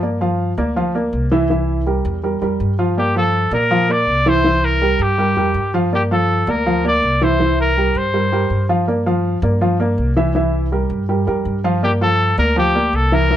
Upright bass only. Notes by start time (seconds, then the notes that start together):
Already playing: G2
0.58 D2
1.13 C2
2.05 E2
2.41 F2
2.60 G2
3.51 A#2
4.07 C2
4.99 G2
5.36 F2
5.54 G2
6.47 D2
7.02 C2
7.95 G2
8.50 G2
9.42 G2
9.98 C2
10.90 G2
11.27 F2
11.45 G2
12.38 D2
12.93 C2